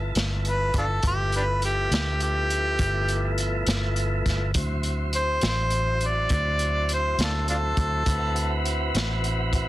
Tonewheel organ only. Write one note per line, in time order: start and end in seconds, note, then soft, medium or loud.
0.00 1.00 F3 medium
0.00 1.00 B3 soft
0.00 1.01 E4 medium
0.00 1.00 A4 medium
1.03 4.51 F3 medium
1.03 4.51 A3 medium
1.03 4.52 B3 medium
1.03 4.51 E4 medium
4.56 8.03 F#3 medium
4.56 8.03 C4 medium
4.56 8.04 E4 medium
4.56 8.04 C5 medium
8.06 9.68 C4 medium
8.06 9.68 E4 medium
8.06 9.68 F#4 medium
8.06 9.68 B4 medium